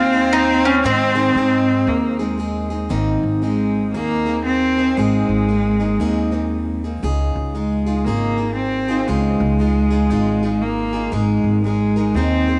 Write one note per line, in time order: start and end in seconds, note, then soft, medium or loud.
0.00 0.81 D#2 medium
0.00 0.15 G#3 medium
0.00 0.14 C4 medium
0.00 1.90 C4 loud
0.00 0.14 D#4 medium
0.00 0.32 F4 medium
0.00 0.13 G#4 medium
0.13 0.31 G#3 soft
0.13 0.32 C4 soft
0.13 0.32 D#4 soft
0.13 0.33 G#4 soft
0.32 0.84 G#3 medium
0.32 0.85 C4 medium
0.32 0.66 D#4 medium
0.32 0.85 D#4 medium
0.32 0.85 G#4 medium
0.65 0.85 C#4 medium
0.84 1.16 G#2 medium
0.84 1.34 G#2 medium
0.84 1.15 D#3 medium
0.84 1.15 G#3 medium
0.84 1.15 C4 medium
0.84 2.36 C4 medium
0.84 1.15 D#4 medium
0.84 1.14 G#4 medium
1.15 1.37 G#2 soft
1.15 1.36 D#3 soft
1.15 1.35 G#3 medium
1.15 1.36 C4 medium
1.15 1.36 D#4 medium
1.15 1.36 G#4 medium
1.35 1.85 G#2 medium
1.35 2.19 G#3 medium
1.35 2.19 C4 medium
1.35 2.18 D#4 medium
1.35 2.18 G#4 medium
1.87 2.87 D#2 medium
1.87 2.21 A#3 medium
2.19 2.71 G#3 medium
2.19 2.37 G#3 soft
2.19 2.38 C4 soft
2.19 2.38 D#4 soft
2.19 2.39 G#4 soft
2.38 2.70 G#3 medium
2.38 2.71 C4 medium
2.38 2.70 D#4 medium
2.38 2.69 G#4 medium
2.70 2.90 G#3 soft
2.70 2.90 C4 soft
2.70 2.90 D#4 soft
2.70 2.90 G#4 soft
2.89 3.21 G#1 medium
2.89 3.42 G#2 medium
2.89 3.42 D#3 medium
2.89 3.41 A#3 medium
2.89 3.41 C4 medium
2.89 3.43 D#4 medium
2.89 3.43 G#4 medium
3.23 3.91 G#1 medium
3.42 3.90 G#3 medium
3.42 3.93 A#3 medium
3.42 3.94 C4 medium
3.42 3.95 D#4 soft
3.42 3.96 G#4 medium
3.94 4.93 D#2 medium
3.94 4.26 G#2 medium
3.94 4.26 D#3 medium
3.94 4.42 A#3 medium
3.94 4.26 A#3 medium
3.94 4.26 C4 medium
3.94 4.26 D#4 medium
3.94 4.25 G#4 medium
4.26 4.79 A#3 soft
4.26 4.78 C4 soft
4.26 4.78 D#4 soft
4.26 4.77 G#4 soft
4.46 4.99 C4 medium
4.77 4.96 A#3 soft
4.77 4.97 C4 soft
4.77 4.97 D#4 soft
4.77 4.97 G#4 soft
4.97 5.28 G#1 medium
4.97 5.48 G#2 medium
4.97 5.49 D#3 medium
4.97 6.83 G#3 medium
4.97 5.48 A#3 medium
4.97 5.48 C4 medium
4.97 5.50 D#4 medium
4.97 5.51 G#4 medium
5.29 5.97 G#1 medium
5.49 5.80 A#3 soft
5.49 5.80 C4 medium
5.49 5.79 D#4 medium
5.49 5.79 G#4 medium
5.80 6.00 A#3 soft
5.80 6.00 C4 soft
5.80 6.00 D#4 soft
5.80 6.00 G#4 soft
6.00 6.99 D#2 medium
6.00 6.32 G#2 medium
6.00 6.32 D#3 medium
6.00 6.32 A#3 medium
6.00 6.31 C4 medium
6.00 6.31 D#4 medium
6.00 6.30 G#4 medium
6.31 6.84 A#3 soft
6.31 6.83 C4 soft
6.31 6.85 D#4 soft
6.31 6.84 G#4 soft
6.84 7.03 A#3 soft
6.84 7.03 C4 soft
6.84 7.02 D#4 soft
6.84 7.03 G#4 soft
7.03 7.33 C#2 medium
7.03 7.54 C#3 medium
7.03 7.54 G#3 medium
7.03 7.55 D#4 medium
7.03 7.55 F4 medium
7.03 7.57 G#4 medium
7.36 8.03 C#2 medium
7.53 8.06 G#3 medium
7.53 7.86 G#3 soft
7.53 7.87 D#4 medium
7.53 7.86 F4 medium
7.53 7.85 G#4 medium
7.86 8.06 D#4 soft
7.86 8.06 F4 soft
7.86 8.06 G#4 soft
8.05 9.05 G#1 medium
8.05 8.38 C#3 medium
8.05 8.38 G#3 medium
8.05 8.55 A#3 medium
8.05 8.38 D#4 medium
8.05 8.37 F4 medium
8.05 8.36 G#4 medium
8.38 8.90 D#4 soft
8.38 8.89 F4 soft
8.38 8.88 G#4 soft
8.56 9.09 C4 medium
8.88 9.07 D#4 soft
8.88 9.08 F4 soft
8.88 9.08 G#4 soft
9.07 9.38 C#2 medium
9.07 9.59 C#3 medium
9.07 10.63 G#3 medium
9.07 9.59 G#3 medium
9.07 9.60 D#4 medium
9.07 9.60 F4 medium
9.07 9.61 G#4 medium
9.40 10.07 C#2 medium
9.59 9.91 G#3 medium
9.59 9.91 D#4 medium
9.59 9.91 F4 medium
9.59 9.89 G#4 medium
9.91 10.10 D#4 soft
9.91 10.11 F4 soft
9.91 10.11 G#4 soft
10.10 11.09 G#1 medium
10.10 10.42 C#3 medium
10.10 10.42 G#3 medium
10.10 10.42 D#4 medium
10.10 10.42 F4 medium
10.10 10.41 G#4 medium
10.43 10.95 D#4 soft
10.43 10.93 F4 soft
10.43 10.93 G#4 soft
10.62 11.14 A#3 medium
10.93 11.12 D#4 soft
10.93 11.13 F4 soft
10.93 11.12 G#4 soft
11.12 11.43 G#1 medium
11.12 11.64 G#2 medium
11.12 11.64 D#3 medium
11.12 11.63 G#3 medium
11.12 11.64 G#3 medium
11.12 11.65 D#4 medium
11.12 11.64 G#4 medium
11.12 11.66 A#4 medium
11.44 12.12 G#1 medium
11.64 11.96 G#3 medium
11.64 12.17 G#3 medium
11.64 11.97 D#4 medium
11.64 11.96 G#4 medium
11.64 11.95 A#4 medium
11.96 12.15 G#3 soft
11.96 12.16 D#4 soft
11.96 12.16 G#4 soft
11.96 12.16 A#4 soft
12.14 12.60 D#2 medium
12.14 12.48 G#2 medium
12.14 12.48 D#3 medium
12.14 12.48 G#3 medium
12.14 12.60 C4 medium
12.14 12.48 D#4 medium
12.14 12.47 G#4 medium
12.14 12.46 A#4 medium
12.47 12.60 G#3 soft
12.47 12.60 D#4 soft
12.47 12.60 G#4 soft
12.47 12.60 A#4 soft